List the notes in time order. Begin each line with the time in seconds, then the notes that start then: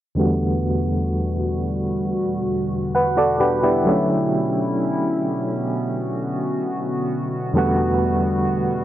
0.15 E2 B2 D3 G3 A3 B3 F#4
0.19 B3 F#4
2.95 B4 F#5
3.17 B3 F#4 A4 D5
3.40 D4 F#4 G4 B4
3.63 B3 D4 E4 G4
3.84 D3 F#3 A3 C#4 E4
3.89 E4
5.70 F#4
7.53 E2 D3 G3 A3 B3
7.58 F#4